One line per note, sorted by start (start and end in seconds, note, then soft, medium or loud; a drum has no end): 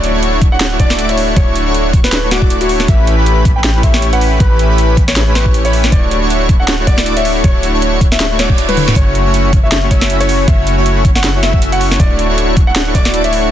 0.00 1.35 D1 medium
0.00 0.12 A3 medium
0.00 0.12 D4 medium
0.00 0.12 E4 medium
0.00 0.12 F#4 medium
0.00 0.12 C#5 medium
0.00 closed hi-hat medium
0.14 0.40 A3 loud
0.14 0.40 D4 medium
0.14 0.40 E4 medium
0.14 0.40 F#4 medium
0.14 0.40 C#5 loud
0.23 closed hi-hat medium
0.42 0.78 A3 medium
0.42 0.78 D4 medium
0.42 0.78 E4 medium
0.42 0.78 F#4 medium
0.42 0.78 C#5 medium
0.42 kick loud
0.42 closed hi-hat medium
0.52 0.76 F#5 loud
0.61 snare loud
0.61 closed hi-hat medium
0.80 1.07 A3 medium
0.80 1.07 D4 medium
0.80 1.07 E4 medium
0.80 1.07 F#4 medium
0.80 1.07 D5 loud
0.80 1.05 D5 medium
0.80 kick medium
0.80 closed hi-hat medium
0.90 snare medium
0.99 closed hi-hat medium
1.09 1.35 A3 medium
1.09 1.35 D4 medium
1.09 1.35 E4 medium
1.09 1.35 F#4 medium
1.09 1.35 C#5 medium
1.09 1.33 E5 medium
1.09 closed hi-hat medium
1.18 open hi-hat medium
1.36 2.87 D1 medium
1.36 1.64 A3 medium
1.36 1.64 D4 medium
1.36 1.64 E4 medium
1.36 1.64 F#4 medium
1.36 1.64 C#5 medium
1.36 1.61 C#5 loud
1.36 kick loud
1.36 closed hi-hat medium
1.55 closed hi-hat medium
1.66 1.91 A3 loud
1.66 1.91 D4 medium
1.66 1.91 E4 medium
1.66 1.91 F#4 medium
1.66 1.91 C#5 loud
1.74 closed hi-hat medium
1.93 2.29 A3 medium
1.93 2.29 D4 medium
1.93 2.29 E4 medium
1.93 2.29 F#4 medium
1.93 2.29 C#5 medium
1.93 kick loud
1.93 closed hi-hat medium
2.04 2.28 B4 loud
2.04 snare medium
2.12 snare loud
2.12 closed hi-hat medium
2.31 2.58 A3 medium
2.31 2.58 D4 medium
2.31 2.58 E4 medium
2.31 2.56 F#4 medium
2.31 2.58 F#4 medium
2.31 2.58 D5 loud
2.31 snare medium
2.31 closed hi-hat medium
2.42 kick medium
2.50 closed hi-hat medium
2.61 2.86 A3 medium
2.61 2.86 D4 medium
2.61 2.86 E4 medium
2.61 2.85 F#4 medium
2.61 2.86 F#4 medium
2.61 2.86 C#5 medium
2.61 closed hi-hat medium
2.69 open hi-hat medium
2.80 snare medium
2.88 4.39 A1 medium
2.88 3.15 A3 medium
2.88 3.15 C#4 medium
2.88 3.15 E4 medium
2.88 3.15 G4 medium
2.88 3.15 B4 medium
2.88 3.13 E5 loud
2.88 kick loud
2.88 closed hi-hat medium
3.07 closed hi-hat medium
3.18 3.43 A3 loud
3.18 3.43 C#4 medium
3.18 3.43 E4 medium
3.18 3.43 G4 medium
3.18 3.43 B4 loud
3.26 closed hi-hat medium
3.45 3.81 A3 medium
3.45 3.81 C#4 medium
3.45 3.81 E4 medium
3.45 3.81 G4 medium
3.45 3.81 B4 medium
3.45 kick loud
3.45 closed hi-hat medium
3.56 3.80 G5 medium
3.64 snare loud
3.64 closed hi-hat medium
3.83 4.10 A3 medium
3.83 4.10 C#4 medium
3.83 4.10 E4 medium
3.83 4.10 G4 medium
3.83 4.10 C#5 medium
3.83 4.10 C#5 loud
3.83 4.08 E5 medium
3.83 kick medium
3.83 closed hi-hat medium
3.94 snare medium
4.02 closed hi-hat medium
4.13 4.38 A3 medium
4.13 4.38 C#4 medium
4.13 4.38 E4 medium
4.13 4.38 G4 medium
4.13 4.38 B4 medium
4.13 4.37 F#5 loud
4.13 closed hi-hat medium
4.21 open hi-hat medium
4.40 5.90 A1 medium
4.40 4.67 A3 medium
4.40 4.67 C#4 medium
4.40 4.67 E4 medium
4.40 4.67 G4 medium
4.40 4.65 B4 loud
4.40 4.67 B4 medium
4.40 kick loud
4.40 closed hi-hat medium
4.59 closed hi-hat medium
4.70 4.95 A3 loud
4.70 4.95 C#4 medium
4.70 4.95 E4 medium
4.70 4.95 G4 medium
4.70 4.95 B4 loud
4.78 closed hi-hat medium
4.97 5.33 A3 medium
4.97 5.33 C#4 medium
4.97 5.33 E4 medium
4.97 5.33 G4 medium
4.97 5.33 B4 loud
4.97 5.33 B4 medium
4.97 kick loud
4.97 closed hi-hat medium
5.08 5.32 C#5 medium
5.08 snare medium
5.16 snare loud
5.16 closed hi-hat medium
5.35 5.62 A3 medium
5.35 5.62 C#4 medium
5.35 5.62 E4 medium
5.35 5.62 G4 medium
5.35 5.60 B4 medium
5.35 5.62 C#5 loud
5.35 snare medium
5.35 closed hi-hat medium
5.46 kick medium
5.54 closed hi-hat medium
5.65 5.90 A3 medium
5.65 5.90 C#4 medium
5.65 5.90 E4 medium
5.65 5.90 G4 medium
5.65 5.90 B4 medium
5.65 5.89 C#5 loud
5.65 closed hi-hat medium
5.73 open hi-hat medium
5.84 snare medium
5.92 7.42 D1 medium
5.92 6.19 A3 medium
5.92 6.19 D4 medium
5.92 6.19 E4 medium
5.92 6.19 F#4 medium
5.92 6.19 C#5 medium
5.92 6.17 D5 loud
5.92 kick loud
5.92 closed hi-hat medium
6.11 closed hi-hat medium
6.22 6.47 A3 loud
6.22 6.47 D4 medium
6.22 6.47 E4 medium
6.22 6.47 F#4 medium
6.22 6.47 C#5 loud
6.30 closed hi-hat medium
6.49 6.85 A3 medium
6.49 6.85 D4 medium
6.49 6.85 E4 medium
6.49 6.85 F#4 medium
6.49 6.85 C#5 medium
6.49 kick loud
6.49 closed hi-hat medium
6.60 6.83 F#5 medium
6.68 snare loud
6.68 closed hi-hat medium
6.87 7.14 A3 medium
6.87 7.14 D4 medium
6.87 7.14 E4 medium
6.87 7.14 F#4 medium
6.87 7.12 D5 medium
6.87 7.14 D5 loud
6.87 kick medium
6.87 closed hi-hat medium
6.98 snare medium
7.06 closed hi-hat medium
7.17 7.42 A3 medium
7.17 7.42 D4 medium
7.17 7.42 E4 medium
7.17 7.42 F#4 medium
7.17 7.42 C#5 medium
7.17 7.40 E5 loud
7.17 closed hi-hat medium
7.25 open hi-hat medium
7.44 8.94 D1 medium
7.44 7.71 A3 medium
7.44 7.71 D4 medium
7.44 7.71 E4 medium
7.44 7.71 F#4 medium
7.44 7.71 C#5 medium
7.44 7.69 C#5 loud
7.44 kick loud
7.44 closed hi-hat medium
7.63 closed hi-hat medium
7.74 7.99 A3 loud
7.74 7.99 D4 medium
7.74 7.99 E4 medium
7.74 7.99 F#4 medium
7.74 7.99 C#5 loud
7.82 closed hi-hat medium
8.01 8.37 A3 medium
8.01 8.37 D4 medium
8.01 8.37 E4 medium
8.01 8.37 F#4 medium
8.01 8.37 C#5 medium
8.01 kick loud
8.01 closed hi-hat medium
8.12 8.35 E5 medium
8.12 snare medium
8.20 snare loud
8.20 closed hi-hat medium
8.20 reverse cymbal medium
8.39 8.66 A3 medium
8.39 8.66 D4 medium
8.39 8.66 E4 medium
8.39 8.66 F#4 medium
8.39 8.64 C#5 medium
8.39 8.66 D5 loud
8.39 snare medium
8.39 closed hi-hat medium
8.50 kick medium
8.58 closed hi-hat medium
8.69 8.94 A3 medium
8.69 8.94 D4 medium
8.69 8.94 E4 medium
8.69 8.94 F#4 medium
8.69 8.92 B4 loud
8.69 8.94 C#5 medium
8.69 closed hi-hat medium
8.69 high tom medium
8.77 open hi-hat medium
8.77 mid tom medium
8.88 snare medium
8.88 mid tom medium
8.96 10.46 F#1 medium
8.96 9.23 A3 medium
8.96 9.23 C#4 medium
8.96 9.23 E4 medium
8.96 9.23 F#4 medium
8.96 9.21 C#5 loud
8.96 9.23 C#5 medium
8.96 kick loud
8.96 closed hi-hat medium
9.15 closed hi-hat medium
9.26 9.51 A3 medium
9.26 9.51 C#4 medium
9.26 9.51 E4 medium
9.26 9.51 F#4 medium
9.26 9.51 C#5 loud
9.34 closed hi-hat medium
9.53 9.89 A3 medium
9.53 9.89 C#4 medium
9.53 9.89 E4 medium
9.53 9.89 F#4 medium
9.53 9.89 C#5 medium
9.53 kick loud
9.53 closed hi-hat medium
9.63 9.87 E5 medium
9.72 snare loud
9.72 closed hi-hat medium
9.91 10.18 A3 medium
9.91 10.18 C#4 medium
9.91 10.18 E4 medium
9.91 10.18 F#4 medium
9.91 10.16 C#5 medium
9.91 10.18 E5 medium
9.91 10.18 E5 loud
9.91 kick medium
9.91 closed hi-hat medium
10.01 snare medium
10.10 closed hi-hat medium
10.20 10.46 A3 medium
10.20 10.46 C#4 medium
10.20 10.46 E4 medium
10.20 10.46 F#4 medium
10.20 10.44 C#5 loud
10.20 10.46 C#5 medium
10.20 closed hi-hat medium
10.29 open hi-hat medium
10.48 11.98 F#1 medium
10.48 10.75 A3 medium
10.48 10.75 C#4 medium
10.48 10.75 E4 medium
10.48 10.75 F#4 medium
10.48 10.75 C#5 medium
10.48 10.73 E5 loud
10.48 kick loud
10.48 closed hi-hat medium
10.67 closed hi-hat medium
10.78 11.03 A3 medium
10.78 11.03 C#4 medium
10.78 11.03 E4 medium
10.78 11.03 F#4 medium
10.78 11.03 C#5 loud
10.86 closed hi-hat medium
11.05 11.41 A3 medium
11.05 11.41 C#4 medium
11.05 11.41 E4 medium
11.05 11.41 F#4 medium
11.05 11.41 C#5 medium
11.05 kick loud
11.05 closed hi-hat medium
11.15 11.39 F#5 medium
11.15 snare medium
11.24 snare loud
11.24 closed hi-hat medium
11.43 11.70 A3 medium
11.43 11.70 C#4 medium
11.43 11.70 E4 medium
11.43 11.70 F#4 medium
11.43 11.68 E5 medium
11.43 11.70 E5 loud
11.43 11.70 E5 medium
11.43 snare medium
11.43 closed hi-hat medium
11.53 kick medium
11.62 closed hi-hat medium
11.72 11.98 A3 medium
11.72 11.98 C#4 medium
11.72 11.98 E4 medium
11.72 11.98 F#4 medium
11.72 11.98 C#5 medium
11.72 11.96 F#5 loud
11.72 closed hi-hat medium
11.81 open hi-hat medium
11.91 snare medium
12.00 13.50 D1 medium
12.00 12.27 A3 medium
12.00 12.27 D4 medium
12.00 12.27 E4 medium
12.00 12.27 F#4 medium
12.00 12.27 C#5 medium
12.00 12.25 D5 loud
12.00 kick loud
12.00 closed hi-hat medium
12.19 closed hi-hat medium
12.29 12.55 A3 medium
12.29 12.55 D4 medium
12.29 12.55 E4 medium
12.29 12.55 F#4 medium
12.29 12.55 C#5 loud
12.38 closed hi-hat medium
12.57 12.93 A3 medium
12.57 12.93 D4 medium
12.57 12.93 E4 medium
12.57 12.93 F#4 medium
12.57 12.93 C#5 medium
12.57 kick loud
12.57 closed hi-hat medium
12.67 12.91 F#5 loud
12.76 snare loud
12.76 closed hi-hat medium
12.95 13.22 A3 medium
12.95 13.22 D4 medium
12.95 13.22 E4 medium
12.95 13.22 F#4 medium
12.95 13.22 D5 loud
12.95 13.20 D5 loud
12.95 kick medium
12.95 closed hi-hat medium
13.05 snare medium
13.14 closed hi-hat medium
13.24 13.50 A3 medium
13.24 13.50 D4 medium
13.24 13.50 E4 medium
13.24 13.50 F#4 medium
13.24 13.50 C#5 medium
13.24 13.48 E5 loud
13.24 closed hi-hat medium
13.33 open hi-hat medium